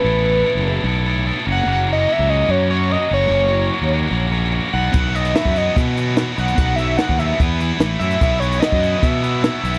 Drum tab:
HH |----------------|----------------|----------------|x-xxx-x-x-x-x-xx|
SD |----------------|----------------|----------------|-o--o-------o---|
BD |----------------|----------------|----------------|o----o--o-------|

HH |x-x-x-x-x-x-x-xx|x-xxx-x-x-x-x-xx|
SD |----o-------o---|----o-------o---|
BD |o----o--o-------|o----o--o-------|